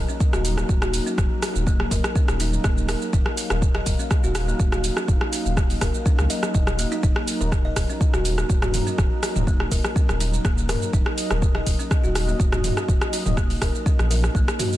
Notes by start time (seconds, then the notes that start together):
Already playing: F#3 A#3 D#4 A#4
0.09 C#4, shaker
0.20 kick, shaker
0.33 D#1 F#4, cross-stick, shaker
0.45 open hi-hat, shaker
0.58 A#3, cross-stick, shaker
0.69 D#1, kick, shaker
0.82 F#4, cross-stick, shaker
0.94 open hi-hat, shaker
1.06 C#4, shaker
1.18 D#1, kick, cross-stick, shaker
1.42 D#4, cross-stick, open hi-hat, shaker
1.55 D#1, shaker
1.67 A#3, kick, shaker
1.80 cross-stick
1.91 D#1 A#4, kick, open hi-hat, shaker
2.04 cross-stick, shaker
2.16 C#4, kick, shaker
2.28 D#1, cross-stick, shaker
2.40 D#4, open hi-hat, shaker
2.53 shaker
2.64 D#1 A#3, kick, cross-stick, shaker
2.78 shaker
2.89 A#4, cross-stick, open hi-hat, shaker
3.02 shaker
3.13 D#1 D#4 F5, kick, shaker
3.26 cross-stick
3.37 open hi-hat, shaker
3.50 D#1 A#4, cross-stick, shaker
3.62 kick, shaker
3.75 D#5, cross-stick
3.86 D#1, kick, open hi-hat, shaker
3.99 C#4, shaker
4.11 kick, cross-stick, shaker
4.24 D#1 F#4, shaker
4.35 cross-stick, open hi-hat, shaker
4.48 A#3, shaker
4.59 D#1, kick, shaker
4.72 F#4, cross-stick, shaker
4.84 open hi-hat, shaker
4.97 C#4, cross-stick, shaker
5.08 D#1, kick, shaker
5.21 cross-stick
5.33 D#4, open hi-hat, shaker
5.45 D#1, shaker
5.57 A#3, kick, cross-stick, shaker
5.70 open hi-hat, shaker
5.81 D#1 A#4, kick, cross-stick, open hi-hat, shaker
5.94 shaker
6.06 C#4, kick, shaker
6.19 C#2, cross-stick, shaker
6.30 D#5, open hi-hat, shaker
6.43 cross-stick, shaker
6.55 D#1 D#5, kick, shaker
6.67 cross-stick, shaker
6.79 A#3, open hi-hat, shaker
6.92 D#4, shaker
7.03 D#1 D#4 A#4, kick, shaker
7.16 cross-stick
7.28 open hi-hat, shaker
7.41 D#1 A#4, shaker
7.52 kick, cross-stick, shaker
7.65 D#5
7.76 D#1, kick, cross-stick, open hi-hat, shaker
7.89 C#4, shaker
8.01 kick, shaker
8.14 D#1 F#4, cross-stick, shaker
8.25 open hi-hat, shaker
8.38 A#3, cross-stick, shaker
8.50 D#1, kick, shaker
8.62 F#4, cross-stick, mid tom, shaker
8.74 mid tom, open hi-hat, shaker
8.87 C#4, shaker
8.98 D#1, kick, cross-stick, shaker
9.23 D#4, cross-stick, open hi-hat, shaker
9.36 D#1, mid tom, shaker
9.47 A#3, kick, shaker
9.60 cross-stick
9.71 D#1 A#4, kick, open hi-hat, shaker
9.84 cross-stick, shaker
9.96 C#4, kick, shaker
10.09 D#1, cross-stick, shaker
10.20 D#4, open hi-hat, shaker
10.34 shaker
10.45 D#1 A#3, kick, cross-stick, shaker
10.58 shaker
10.69 A#4, cross-stick, mid tom, open hi-hat, shaker
10.82 shaker
10.93 D#1 D#4 D#5, kick, shaker
11.06 cross-stick
11.18 open hi-hat, shaker
11.31 D#1 A#4, cross-stick, shaker
11.42 kick, shaker
11.55 D#5, cross-stick
11.67 D#1, kick, open hi-hat, shaker
11.79 C#4, shaker
11.91 kick, cross-stick, shaker
12.04 D#1 F#4, shaker
12.15 cross-stick, open hi-hat, shaker
12.28 A#3, shaker
12.40 D#1, kick, shaker
12.52 F#4, cross-stick, mid tom, shaker
12.64 mid tom, open hi-hat, shaker
12.77 C#4, cross-stick, shaker
12.88 D#1, kick, shaker
13.01 cross-stick, shaker
13.13 D#4, open hi-hat, shaker
13.26 D#1, mid tom, shaker
13.37 A#3, kick, cross-stick, shaker
13.50 open hi-hat, shaker
13.62 D#1 A#4, kick, cross-stick, open hi-hat, shaker
13.75 shaker
13.86 C#4, kick, shaker
13.99 A#1, cross-stick, shaker
14.10 A#4, open hi-hat, shaker
14.24 cross-stick, shaker
14.35 A#1 A#3, kick, shaker
14.48 cross-stick, shaker
14.59 F#4, mid tom, open hi-hat, shaker
14.73 shaker